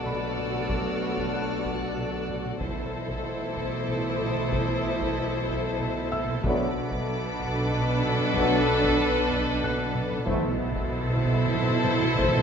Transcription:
0.00 2.56 B1 medium
0.00 2.57 B2 medium
0.00 2.57 F#3 medium
0.00 2.57 A3 medium
0.00 2.57 B3 medium
0.00 2.57 D4 medium
0.00 2.57 F#4 medium
0.00 2.57 A4 soft
0.00 2.57 A4 medium
0.00 2.57 D5 soft
0.00 2.57 D5 medium
0.00 2.57 F#5 soft
0.00 2.26 D6 soft
0.00 2.26 E6 soft
0.00 impact medium
0.05 1.93 B5 medium
0.05 1.71 F6 soft
0.05 taiko mid medium
0.37 taiko mid medium
0.53 taiko mid soft
0.69 taiko loud
1.17 taiko medium
1.34 3.21 F#5 soft
1.34 3.21 F#6 soft
1.65 taiko medium
1.71 2.25 F#6 soft
1.97 taiko mid medium
2.29 taiko mid medium
2.45 taiko mid soft
2.60 6.39 B1 medium
2.60 6.40 B2 medium
2.60 6.39 E3 medium
2.60 6.39 A3 medium
2.60 6.40 E4 medium
2.60 6.27 E4 medium
2.60 6.40 A4 medium
2.60 6.40 A4 soft
2.60 6.44 C5 medium
2.60 6.40 C5 medium
2.60 6.27 C5 medium
2.60 6.44 E5 soft
2.60 6.08 C6 soft
2.60 taiko loud
3.09 taiko medium
3.22 6.07 D6 medium
3.57 taiko medium
3.86 6.07 D#6 medium
3.86 taiko mid medium
4.20 taiko mid medium
4.36 taiko mid soft
4.52 taiko loud
5.00 taiko medium
5.48 taiko medium
5.80 taiko mid medium
6.12 7.99 E5 medium
6.12 7.99 E6 medium
6.12 taiko mid medium
6.28 taiko mid medium
6.43 10.23 B1 medium
6.43 10.22 B2 medium
6.43 7.35 B2 loud
6.43 6.66 F#3 medium
6.43 6.66 A3 medium
6.43 6.67 B3 medium
6.43 10.23 D4 loud
6.43 6.66 D4 medium
6.43 10.23 A4 loud
6.43 10.23 A4 medium
6.43 10.23 B4 loud
6.43 10.28 D5 medium
6.43 10.28 F#5 medium
6.43 9.91 B5 medium
6.43 8.57 D6 medium
6.43 taiko loud
6.91 taiko medium
7.39 taiko medium
7.71 taiko mid medium
8.03 taiko mid medium
8.19 taiko mid medium
8.34 8.58 F#3 loud
8.34 8.58 A3 medium
8.34 8.57 B3 medium
8.34 8.57 D4 medium
8.34 taiko loud
8.57 9.27 C#6 medium
8.83 taiko medium
9.31 taiko medium
9.63 11.51 F#6 medium
9.63 taiko mid medium
9.95 taiko mid medium
10.11 taiko mid medium
10.25 12.42 B1 medium
10.25 12.42 B2 medium
10.25 10.33 B2 soft
10.25 10.50 A3 medium
10.25 10.48 E4 medium
10.25 12.42 E4 loud
10.25 12.42 A4 loud
10.25 12.42 A4 medium
10.25 10.48 C5 medium
10.25 12.42 C5 loud
10.25 12.42 C5 medium
10.25 12.42 E5 medium
10.25 taiko loud
10.29 10.51 E3 medium
10.34 10.41 B2 soft
10.42 10.48 B2 soft
10.49 10.56 B2 soft
10.57 10.64 B2 soft
10.65 10.70 B2 soft
10.72 10.77 B2 soft
10.72 taiko medium
10.78 10.86 B2 soft
10.87 10.93 B2 soft
10.94 11.00 B2 soft
11.01 11.08 B2 soft
11.09 11.15 B2 medium
11.17 11.23 B2 medium
11.23 11.31 B2 soft
11.23 taiko medium
11.32 11.38 B2 soft
11.39 11.45 B2 medium
11.46 11.53 B2 medium
11.54 11.60 B2 medium
11.54 taiko mid medium
11.61 11.68 B2 medium
11.69 11.76 B2 medium
11.77 11.83 B2 medium
11.84 11.91 B2 medium
11.84 taiko mid medium
11.92 11.99 B2 medium
12.00 12.06 B2 medium
12.00 taiko mid medium
12.07 12.14 B2 medium
12.15 12.21 B2 medium
12.15 taiko loud
12.19 12.28 B2 medium
12.19 12.41 E3 medium
12.19 12.41 A3 medium
12.19 12.41 E4 medium
12.19 12.41 C5 medium
12.29 12.35 B2 medium
12.37 12.42 B2 medium

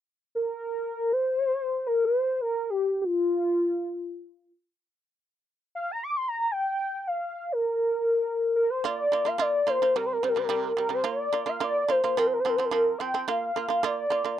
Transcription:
0.35 1.14 A#4 medium
1.12 1.88 C5 loud
1.87 2.06 A#4 medium
2.05 2.42 C5 medium
2.41 2.71 A#4 medium
2.70 3.02 G4 medium
3.02 4.52 F4 medium
3.02 3.06 G4 medium
5.75 5.93 F5 medium
5.91 6.05 A#5 medium
6.03 6.18 D6 medium
6.16 6.30 C6 medium
6.28 6.38 A#5 medium
6.39 6.53 A#5 medium
6.51 7.09 G5 medium
7.07 7.54 F5 medium
7.52 8.55 A#4 medium
8.56 8.71 A#4 medium
8.70 8.84 C5 medium
8.84 9.06 A#3 medium
8.84 9.07 F4 medium
8.84 9.29 D5 loud
9.12 9.23 A#3 medium
9.12 9.24 F4 medium
9.25 9.37 A#3 medium
9.25 9.37 F4 medium
9.25 9.43 F5 medium
9.38 9.61 A#3 medium
9.38 9.62 F4 medium
9.38 9.71 D5 medium
9.67 9.78 A#3 medium
9.67 9.79 F4 medium
9.67 9.96 C5 medium
9.82 9.93 A#3 medium
9.82 9.93 F4 medium
9.96 10.18 C3 medium
9.96 10.18 G3 medium
9.96 10.07 A#4 medium
10.06 10.14 C5 medium
10.13 10.24 A#4 medium
10.22 10.34 C3 medium
10.22 10.35 G3 medium
10.22 10.30 C5 medium
10.29 10.40 A#4 medium
10.36 10.47 C3 medium
10.36 10.48 G3 medium
10.36 10.45 C5 medium
10.43 10.79 A#4 medium
10.49 10.72 C3 medium
10.49 10.72 G3 medium
10.77 10.88 C3 medium
10.77 10.89 G3 medium
10.77 10.96 A#4 medium
10.89 11.02 C3 medium
10.89 11.02 G3 medium
10.94 11.05 C5 medium
11.04 11.27 A#3 medium
11.04 11.28 F4 medium
11.04 11.51 D5 medium
11.33 11.44 A#3 medium
11.33 11.45 F4 medium
11.46 11.58 A#3 medium
11.46 11.58 F4 medium
11.46 11.62 F5 medium
11.60 11.83 A#3 medium
11.60 11.84 F4 medium
11.60 11.92 D5 loud
11.88 12.00 A#3 medium
11.88 12.01 F4 medium
11.88 12.19 C5 medium
12.04 12.15 A#3 medium
12.04 12.15 F4 medium
12.17 12.39 F3 medium
12.17 12.40 C4 medium
12.17 12.28 A#4 medium
12.27 12.35 C5 medium
12.33 12.41 A#4 medium
12.39 12.50 C5 medium
12.45 12.56 F3 medium
12.45 12.56 C4 medium
12.45 12.57 A#4 medium
12.56 12.70 F3 medium
12.56 12.70 C4 medium
12.56 12.66 C5 medium
12.65 13.00 A#4 loud
12.71 12.94 F3 medium
12.71 12.95 C4 medium
12.98 13.11 F3 medium
12.98 13.12 C4 medium
12.98 13.30 G5 medium
13.14 13.25 F3 medium
13.14 13.26 C4 medium
13.28 13.50 A#3 medium
13.28 13.50 F4 medium
13.28 13.86 F5 loud
13.56 13.67 A#3 medium
13.56 13.68 F4 medium
13.68 13.80 A#3 medium
13.68 13.81 F4 medium
13.83 14.06 A#3 medium
13.83 14.06 F4 loud
13.83 14.39 D5 loud
14.10 14.22 A#3 medium
14.10 14.23 F4 medium
14.24 14.36 A#3 medium
14.24 14.36 F4 medium

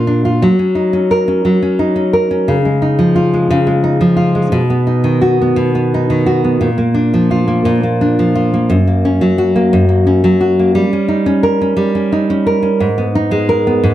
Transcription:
0.00 0.49 A#2 medium
0.00 0.59 A#3 soft
0.00 0.24 F4 medium
0.07 0.49 D4 soft
0.25 0.49 F4 medium
0.42 1.44 F#3 medium
0.59 0.93 C#4 soft
0.75 1.79 D#4 soft
0.93 1.27 C#4 medium
1.11 2.12 A#4 medium
1.28 1.62 C#4 medium
1.45 2.55 F#3 medium
1.62 1.95 C#4 soft
1.79 2.81 D#4 medium
1.96 2.30 C#4 medium
2.13 2.55 A#4 medium
2.31 2.65 C#4 medium
2.48 3.49 C#3 medium
2.65 3.32 G#3 soft
2.82 3.83 D#4 medium
2.99 4.00 F3 medium
3.16 4.15 F4 medium
3.34 3.65 G#3 medium
3.50 4.52 C#3 medium
3.67 4.34 G#3 medium
3.84 4.86 D#4 soft
4.01 4.60 F3 medium
4.17 4.60 F4 medium
4.35 4.60 G#3 medium
4.52 5.55 B2 medium
4.70 5.40 B3 medium
4.87 5.91 D#4 medium
5.04 6.08 D#3 medium
5.21 6.25 F#4 medium
5.42 5.74 B3 medium
5.56 6.60 B2 medium
5.75 6.43 B3 medium
5.94 6.69 D#4 medium
6.10 6.68 D#3 medium
6.26 6.68 F#4 medium
6.44 6.68 B3 soft
6.61 7.64 A#2 medium
6.78 7.47 A#3 medium
6.94 7.98 D4 medium
7.14 8.16 F3 medium
7.31 8.33 F4 medium
7.48 7.83 A#3 medium
7.65 8.68 A#2 medium
7.83 8.53 A#3 soft
8.01 8.76 D4 medium
8.19 8.76 F3 medium
8.35 8.75 F4 medium
8.54 8.87 A#3 soft
8.70 9.72 F#2 medium
8.87 9.55 A#3 soft
9.05 10.06 C#4 medium
9.21 10.23 F#3 medium
9.38 10.39 F#4 medium
9.56 9.88 A#3 medium
9.73 10.82 F#2 medium
9.89 10.59 A#3 medium
10.07 10.93 C#4 medium
10.24 10.74 F#3 medium
10.41 10.81 F#4 medium
10.59 10.92 A#3 medium
10.75 11.75 G3 medium
10.93 11.25 C#4 medium
11.08 12.12 D#4 medium
11.26 11.60 C#4 medium
11.43 12.46 A#4 medium
11.61 11.94 C#4 medium
11.77 12.87 G3 medium
11.95 12.29 C#4 medium
12.12 13.15 D#4 medium
12.30 12.61 C#4 medium
12.46 13.01 A#4 medium
12.63 12.87 C#4 medium
12.80 13.82 G#2 medium
12.98 13.66 B3 medium
13.15 13.94 D#4 medium
13.31 13.94 G#3 medium
13.49 13.94 A#4 medium
13.67 13.94 B3 medium
13.84 13.94 G#2 medium

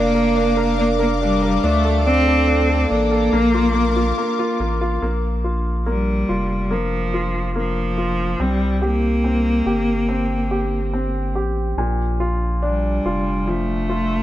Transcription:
0.00 1.59 F1 medium
0.00 0.75 A#3 loud
0.00 0.36 D4 medium
0.00 0.15 A#4 medium
0.00 1.61 A#4 medium
0.00 4.98 F5 medium
0.00 3.29 D6 medium
0.15 0.55 A#4 soft
0.36 0.77 D4 medium
0.57 0.98 A#4 medium
0.79 0.89 A#3 medium
0.79 1.20 D4 medium
0.99 1.10 A#3 medium
0.99 1.41 A#4 medium
1.21 1.65 G3 medium
1.21 1.62 D4 medium
1.42 1.63 A#4 soft
1.63 2.86 D2 loud
1.63 2.06 A3 medium
1.63 2.05 D4 medium
1.63 3.31 A4 medium
1.85 2.26 A4 soft
2.06 2.86 C4 loud
2.06 2.46 D4 soft
2.28 2.68 A4 medium
2.48 2.89 D4 medium
2.69 3.10 A4 medium
2.90 3.30 A1 medium
2.90 4.55 A#3 loud
2.90 3.31 D4 soft
3.11 3.32 A4 soft
3.32 4.13 A#1 medium
3.32 3.73 A#3 medium
3.32 5.01 A#4 medium
3.32 5.01 D6 medium
3.54 3.95 F4 soft
3.74 4.16 A#3 soft
3.96 4.38 F4 medium
4.18 4.59 A#3 soft
4.39 4.80 F4 medium
4.60 4.99 A1 medium
4.60 5.01 A#3 soft
4.81 5.01 F4 soft
5.02 6.25 A#1 medium
5.02 5.85 A#3 soft
5.44 6.27 F4 soft
5.86 6.73 G3 medium
5.86 6.69 A#3 soft
6.29 8.36 F1 medium
6.29 7.12 F4 soft
6.71 7.56 F3 medium
6.71 7.54 A#3 soft
7.14 7.96 F4 soft
7.56 8.43 F3 medium
7.56 8.37 A#3 soft
7.98 8.39 F4 soft
8.39 9.62 C2 medium
8.39 8.84 G3 medium
8.39 9.23 C4 medium
8.82 11.36 A#3 medium
8.82 9.65 G4 soft
9.24 10.07 C4 soft
9.66 11.37 G1 medium
9.66 10.50 G4 soft
10.09 10.92 C4 soft
10.51 11.34 G4 soft
10.94 11.75 C4 soft
11.35 11.74 A1 medium
11.35 11.76 G4 soft
11.77 13.00 A#1 loud
11.77 14.23 A#2 medium
12.20 13.04 F4 soft
12.62 13.51 G3 medium
12.62 14.23 D4 soft
13.05 14.23 F1 medium
13.05 13.88 F4 soft
13.47 14.23 F3 soft
13.47 14.23 A3 medium
13.90 14.23 F4 soft

